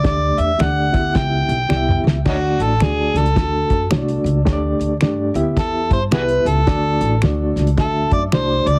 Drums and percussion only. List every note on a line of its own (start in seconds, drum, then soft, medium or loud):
0.05 kick loud
0.05 snare loud
0.05 closed hi-hat medium
0.38 closed hi-hat medium
0.59 finger snap medium
0.59 snare medium
0.59 closed hi-hat medium
0.94 kick medium
0.94 snare soft
0.94 closed hi-hat medium
1.15 kick medium
1.15 snare loud
1.15 closed hi-hat medium
1.49 closed hi-hat medium
1.70 finger snap medium
1.70 snare medium
1.89 mid tom medium
2.07 snare loud
2.25 kick loud
2.25 snare loud
2.25 crash medium
2.60 closed hi-hat medium
2.80 finger snap medium
2.80 snare loud
2.80 closed hi-hat medium
3.16 snare soft
3.16 closed hi-hat medium
3.26 closed hi-hat medium
3.36 kick medium
3.36 snare loud
3.36 closed hi-hat medium
3.70 kick medium
3.70 closed hi-hat medium
3.91 finger snap loud
3.91 snare medium
3.91 closed hi-hat medium
4.08 closed hi-hat medium
4.26 closed hi-hat medium
4.47 kick loud
4.47 snare loud
4.47 closed hi-hat medium
4.81 closed hi-hat medium
5.01 finger snap medium
5.01 snare loud
5.01 closed hi-hat medium
5.35 closed hi-hat medium
5.57 kick medium
5.57 snare loud
5.57 closed hi-hat medium
5.91 kick medium
5.91 closed hi-hat medium
6.11 finger snap medium
6.11 snare loud
6.11 closed hi-hat medium
6.29 closed hi-hat medium
6.46 closed hi-hat medium
6.67 kick loud
6.67 snare loud
6.67 closed hi-hat medium
7.01 closed hi-hat medium
7.22 finger snap medium
7.22 snare loud
7.22 closed hi-hat medium
7.57 snare soft
7.57 closed hi-hat medium
7.67 closed hi-hat medium
7.77 kick loud
7.77 snare loud
7.77 closed hi-hat medium
8.11 kick medium
8.11 closed hi-hat medium
8.32 finger snap medium
8.32 snare loud
8.32 closed hi-hat medium
8.67 closed hi-hat medium